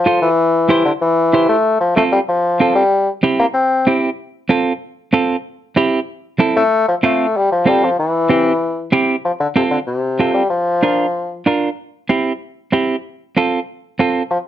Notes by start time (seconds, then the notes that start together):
Already playing: F3
0.06 F4 A4 C5
0.22 E3
0.69 E4 G4 C5
0.85 D3
1.01 E3
1.33 E4 G4 C5
1.49 A3
1.80 F3
1.96 A3 C4 F4 A4
2.12 G3
2.29 F3
2.60 C4 F4 A4
2.75 G3
3.23 C4 E4 G4
3.40 A#3
3.54 C4
3.87 C4 E4 G4
4.49 C4 F4 A4
5.13 C4 F4 A4
5.76 C4 E4 G4
6.39 C4 E4 A4
6.57 A3
6.89 F3
7.03 A3 C4 F4 A4
7.37 G3
7.52 F3
7.66 G3 C4 F4 A4
7.84 F3
7.99 E3
8.29 C4 E4 G4
8.92 C4 E4 G4
9.25 F3
9.40 D3
9.56 C3 C4 F4 A4
9.71 D3
9.87 C3
10.19 C4 F4 A4
10.34 G3
10.50 F3
10.83 D4 F4 A#4
11.46 D4 F4 A#4
12.09 C4 E4 G4
12.72 C4 E4 G4
13.37 C4 F4 A4
13.99 C4 F4 A4
14.31 F3